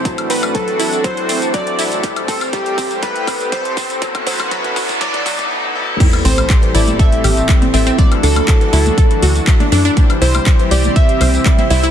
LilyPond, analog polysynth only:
\new Staff \with { instrumentName = "Analog polysynth" } { \time 4/4 \key a \dorian \tempo 4 = 121 <a, fis c' e' a'>4. <a, fis c' e' a'>8 <a, fis c' e' a'>4. <a, fis c' e' a'>8 | <a, g c' e' a'>4 <a, g c' e' a'>4 <a, g c' e' a'>4 <a, g c' e' a'>4 | <a, fis b e' a'>8 <a, fis b e' a'>8 <a, fis b e' a'>8 <a, fis b e' a'>8 <a, fis b e' a'>8 <a, fis b e' a'>8 <a, fis b e' a'>8 <a, fis b e' a'>8 | <a, g c' e' a'>4. <a, g c' e' a'>2 <g c' e' a'>8 |
<fis d' e' a'>4. <fis d' e' a'>2 <fis d' e' a'>8 | <c g c' e' c''>4. <c g c' e' c''>2 <g c' e' c''>8 | }